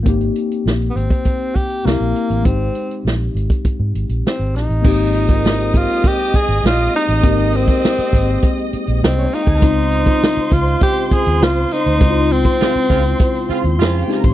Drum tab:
CC |----------------|----------------|x---------------|----------------|
HH |xxxx-xxxx-xx--xx|x-xx--xxx-xx-xxx|-xxx-xxxxxxx--xx|x-xx--xxxxxx--xx|
SD |----o-------o---|----o-------o-o-|----o-------o-o-|----o-------o-o-|
BD |o------oo-o-----|o------oo-------|o--o--o-o-o-----|o--o--o-o------o|

CC |----------------|----------------|
HH |x-xx--xxxxxx--xx|xxxx-xxxxxxx-xxx|
SD |----o-------o-o-|----o-------o-o-|
BD |o--o--o-o-o-----|o--o--o-o------o|